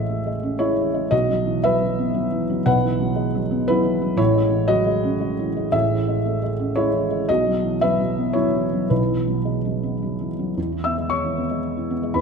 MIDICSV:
0, 0, Header, 1, 2, 480
1, 0, Start_track
1, 0, Tempo, 514139
1, 1047, Time_signature, 3, 2, 24, 8
1, 6803, Tempo, 533808
1, 7763, Tempo, 552995
1, 9683, Tempo, 523104
1, 11194, End_track
2, 0, Start_track
2, 0, Title_t, "Felt piano"
2, 0, Program_c, 0, 0
2, 0, Control_c, 0, 64, 127
2, 0, Note_on_c, 0, 33, 60
2, 0, Note_on_c, 0, 45, 62
2, 0, Note_on_c, 0, 52, 49
2, 0, Note_on_c, 0, 56, 49
2, 0, Note_on_c, 0, 68, 71
2, 0, Note_on_c, 0, 76, 95
2, 91, Note_on_c, 0, 57, 46
2, 182, Note_off_c, 0, 56, 0
2, 248, Note_on_c, 0, 56, 49
2, 250, Note_off_c, 0, 57, 0
2, 284, Note_off_c, 0, 68, 0
2, 316, Note_off_c, 0, 76, 0
2, 401, Note_on_c, 0, 61, 48
2, 503, Note_off_c, 0, 56, 0
2, 550, Note_on_c, 0, 73, 97
2, 558, Note_on_c, 0, 64, 75
2, 559, Note_on_c, 0, 56, 53
2, 658, Note_off_c, 0, 61, 0
2, 713, Note_off_c, 0, 52, 0
2, 713, Note_on_c, 0, 52, 49
2, 818, Note_off_c, 0, 56, 0
2, 879, Note_on_c, 0, 56, 51
2, 976, Note_off_c, 0, 52, 0
2, 1000, Note_off_c, 0, 33, 0
2, 1006, Note_off_c, 0, 45, 0
2, 1009, Note_off_c, 0, 64, 0
2, 1035, Note_on_c, 0, 75, 106
2, 1039, Note_off_c, 0, 73, 0
2, 1041, Note_on_c, 0, 35, 60
2, 1043, Note_off_c, 0, 56, 0
2, 1046, Note_on_c, 0, 47, 61
2, 1046, Note_on_c, 0, 66, 76
2, 1064, Control_c, 0, 64, 0
2, 1201, Control_c, 0, 64, 127
2, 1205, Note_on_c, 0, 54, 51
2, 1361, Note_on_c, 0, 52, 54
2, 1461, Note_off_c, 0, 54, 0
2, 1492, Note_off_c, 0, 66, 0
2, 1520, Note_off_c, 0, 75, 0
2, 1527, Note_on_c, 0, 76, 108
2, 1534, Note_on_c, 0, 54, 47
2, 1538, Note_on_c, 0, 71, 87
2, 1619, Note_off_c, 0, 52, 0
2, 1684, Note_off_c, 0, 54, 0
2, 1698, Note_on_c, 0, 54, 47
2, 1855, Note_on_c, 0, 59, 56
2, 1949, Note_off_c, 0, 54, 0
2, 1998, Note_on_c, 0, 54, 52
2, 2107, Note_off_c, 0, 59, 0
2, 2165, Note_on_c, 0, 52, 54
2, 2258, Note_off_c, 0, 54, 0
2, 2330, Note_on_c, 0, 54, 56
2, 2420, Note_off_c, 0, 52, 0
2, 2443, Note_off_c, 0, 35, 0
2, 2446, Note_off_c, 0, 47, 0
2, 2453, Note_off_c, 0, 71, 0
2, 2480, Note_on_c, 0, 35, 65
2, 2481, Note_on_c, 0, 78, 105
2, 2484, Note_off_c, 0, 76, 0
2, 2492, Note_on_c, 0, 47, 67
2, 2492, Note_on_c, 0, 71, 82
2, 2503, Control_c, 0, 64, 0
2, 2580, Note_off_c, 0, 54, 0
2, 2648, Note_on_c, 0, 52, 51
2, 2658, Control_c, 0, 64, 127
2, 2797, Note_on_c, 0, 54, 56
2, 2897, Note_off_c, 0, 52, 0
2, 2950, Note_on_c, 0, 56, 49
2, 3051, Note_off_c, 0, 54, 0
2, 3112, Note_off_c, 0, 56, 0
2, 3126, Note_on_c, 0, 54, 53
2, 3162, Note_off_c, 0, 71, 0
2, 3194, Note_off_c, 0, 78, 0
2, 3275, Note_on_c, 0, 59, 55
2, 3376, Note_off_c, 0, 54, 0
2, 3433, Note_on_c, 0, 71, 108
2, 3447, Note_on_c, 0, 64, 77
2, 3449, Note_on_c, 0, 54, 59
2, 3529, Note_off_c, 0, 59, 0
2, 3586, Note_on_c, 0, 52, 56
2, 3695, Note_off_c, 0, 54, 0
2, 3747, Note_on_c, 0, 54, 55
2, 3843, Note_off_c, 0, 52, 0
2, 3871, Note_off_c, 0, 35, 0
2, 3877, Note_off_c, 0, 47, 0
2, 3884, Note_off_c, 0, 64, 0
2, 3890, Note_on_c, 0, 33, 71
2, 3897, Note_on_c, 0, 73, 104
2, 3900, Note_on_c, 0, 64, 86
2, 3902, Note_on_c, 0, 45, 71
2, 3908, Note_off_c, 0, 54, 0
2, 3910, Note_off_c, 0, 71, 0
2, 3928, Control_c, 0, 64, 0
2, 4057, Note_on_c, 0, 56, 51
2, 4065, Control_c, 0, 64, 127
2, 4211, Note_on_c, 0, 52, 56
2, 4318, Note_off_c, 0, 56, 0
2, 4349, Note_off_c, 0, 64, 0
2, 4366, Note_on_c, 0, 75, 113
2, 4373, Note_on_c, 0, 66, 86
2, 4379, Note_on_c, 0, 54, 49
2, 4381, Note_off_c, 0, 73, 0
2, 4473, Note_off_c, 0, 52, 0
2, 4541, Note_on_c, 0, 56, 54
2, 4542, Note_off_c, 0, 54, 0
2, 4700, Note_on_c, 0, 61, 59
2, 4801, Note_off_c, 0, 56, 0
2, 4862, Note_on_c, 0, 56, 55
2, 4962, Note_off_c, 0, 61, 0
2, 5032, Note_on_c, 0, 52, 56
2, 5123, Note_off_c, 0, 56, 0
2, 5196, Note_on_c, 0, 56, 54
2, 5288, Note_off_c, 0, 52, 0
2, 5304, Note_off_c, 0, 33, 0
2, 5306, Note_off_c, 0, 66, 0
2, 5310, Note_off_c, 0, 45, 0
2, 5340, Note_off_c, 0, 75, 0
2, 5342, Note_on_c, 0, 33, 60
2, 5342, Note_on_c, 0, 76, 105
2, 5348, Note_on_c, 0, 45, 68
2, 5349, Note_on_c, 0, 68, 75
2, 5369, Control_c, 0, 64, 0
2, 5451, Note_off_c, 0, 56, 0
2, 5512, Note_on_c, 0, 52, 53
2, 5543, Control_c, 0, 64, 127
2, 5679, Note_on_c, 0, 56, 51
2, 5770, Note_off_c, 0, 52, 0
2, 5838, Note_on_c, 0, 57, 50
2, 5934, Note_off_c, 0, 56, 0
2, 5998, Note_off_c, 0, 57, 0
2, 6004, Note_on_c, 0, 56, 50
2, 6039, Note_off_c, 0, 68, 0
2, 6072, Note_off_c, 0, 76, 0
2, 6153, Note_on_c, 0, 61, 51
2, 6260, Note_off_c, 0, 56, 0
2, 6307, Note_on_c, 0, 73, 100
2, 6317, Note_on_c, 0, 64, 74
2, 6322, Note_on_c, 0, 56, 59
2, 6415, Note_off_c, 0, 61, 0
2, 6476, Note_on_c, 0, 52, 52
2, 6579, Note_off_c, 0, 56, 0
2, 6639, Note_on_c, 0, 56, 49
2, 6736, Note_off_c, 0, 52, 0
2, 6762, Note_off_c, 0, 33, 0
2, 6765, Note_off_c, 0, 45, 0
2, 6768, Note_off_c, 0, 64, 0
2, 6797, Note_off_c, 0, 73, 0
2, 6802, Note_off_c, 0, 56, 0
2, 6803, Note_on_c, 0, 75, 105
2, 6812, Note_on_c, 0, 35, 58
2, 6812, Note_on_c, 0, 47, 68
2, 6817, Control_c, 0, 64, 0
2, 6818, Note_on_c, 0, 66, 77
2, 6964, Note_on_c, 0, 54, 52
2, 6986, Control_c, 0, 64, 127
2, 7113, Note_on_c, 0, 52, 49
2, 7216, Note_off_c, 0, 54, 0
2, 7252, Note_off_c, 0, 66, 0
2, 7277, Note_off_c, 0, 75, 0
2, 7277, Note_on_c, 0, 76, 105
2, 7285, Note_on_c, 0, 71, 76
2, 7289, Note_on_c, 0, 54, 45
2, 7372, Note_off_c, 0, 52, 0
2, 7434, Note_off_c, 0, 54, 0
2, 7447, Note_on_c, 0, 54, 50
2, 7605, Note_on_c, 0, 59, 47
2, 7703, Note_off_c, 0, 54, 0
2, 7734, Note_off_c, 0, 71, 0
2, 7745, Note_on_c, 0, 73, 97
2, 7753, Note_on_c, 0, 54, 49
2, 7755, Note_on_c, 0, 64, 74
2, 7764, Note_off_c, 0, 76, 0
2, 7860, Note_off_c, 0, 59, 0
2, 7928, Note_on_c, 0, 52, 46
2, 8011, Note_off_c, 0, 54, 0
2, 8086, Note_on_c, 0, 54, 47
2, 8179, Note_off_c, 0, 52, 0
2, 8201, Note_off_c, 0, 64, 0
2, 8208, Note_off_c, 0, 47, 0
2, 8209, Note_off_c, 0, 35, 0
2, 8230, Note_off_c, 0, 73, 0
2, 8236, Note_on_c, 0, 71, 68
2, 8238, Note_on_c, 0, 35, 54
2, 8242, Note_on_c, 0, 47, 61
2, 8247, Note_on_c, 0, 64, 49
2, 8255, Control_c, 0, 64, 0
2, 8338, Note_off_c, 0, 54, 0
2, 8397, Note_on_c, 0, 52, 44
2, 8426, Control_c, 0, 64, 127
2, 8561, Note_on_c, 0, 54, 47
2, 8654, Note_off_c, 0, 52, 0
2, 8716, Note_on_c, 0, 56, 39
2, 8818, Note_off_c, 0, 54, 0
2, 8880, Note_off_c, 0, 56, 0
2, 8886, Note_on_c, 0, 54, 45
2, 9045, Note_on_c, 0, 59, 44
2, 9142, Note_off_c, 0, 54, 0
2, 9212, Note_on_c, 0, 54, 45
2, 9302, Note_off_c, 0, 59, 0
2, 9366, Note_on_c, 0, 52, 42
2, 9415, Note_off_c, 0, 64, 0
2, 9445, Note_off_c, 0, 71, 0
2, 9466, Note_off_c, 0, 54, 0
2, 9531, Note_on_c, 0, 54, 42
2, 9622, Note_off_c, 0, 52, 0
2, 9649, Note_off_c, 0, 35, 0
2, 9651, Note_off_c, 0, 47, 0
2, 9687, Note_off_c, 0, 54, 0
2, 9688, Note_on_c, 0, 40, 56
2, 9703, Control_c, 0, 64, 0
2, 9826, Note_on_c, 0, 52, 39
2, 9856, Control_c, 0, 64, 127
2, 9934, Note_on_c, 0, 88, 86
2, 9944, Note_on_c, 0, 59, 46
2, 9944, Note_on_c, 0, 76, 62
2, 10013, Note_off_c, 0, 52, 0
2, 10062, Note_on_c, 0, 56, 40
2, 10132, Note_off_c, 0, 59, 0
2, 10164, Note_off_c, 0, 76, 0
2, 10169, Note_on_c, 0, 85, 94
2, 10175, Note_off_c, 0, 88, 0
2, 10179, Note_on_c, 0, 73, 72
2, 10302, Note_on_c, 0, 52, 39
2, 10422, Note_on_c, 0, 59, 45
2, 10443, Note_off_c, 0, 56, 0
2, 10491, Note_off_c, 0, 52, 0
2, 10549, Note_on_c, 0, 56, 44
2, 10610, Note_off_c, 0, 59, 0
2, 10787, Note_on_c, 0, 52, 43
2, 10909, Note_on_c, 0, 59, 49
2, 10921, Note_off_c, 0, 56, 0
2, 10969, Note_off_c, 0, 52, 0
2, 11029, Note_on_c, 0, 56, 48
2, 11088, Note_off_c, 0, 59, 0
2, 11091, Note_off_c, 0, 40, 0
2, 11092, Note_off_c, 0, 73, 0
2, 11124, Note_off_c, 0, 85, 0
2, 11128, Note_on_c, 0, 83, 79
2, 11135, Note_on_c, 0, 40, 59
2, 11140, Control_c, 0, 64, 0
2, 11142, Note_on_c, 0, 71, 61
2, 11194, Note_off_c, 0, 40, 0
2, 11194, Note_off_c, 0, 56, 0
2, 11194, Note_off_c, 0, 71, 0
2, 11194, Note_off_c, 0, 83, 0
2, 11194, End_track
0, 0, End_of_file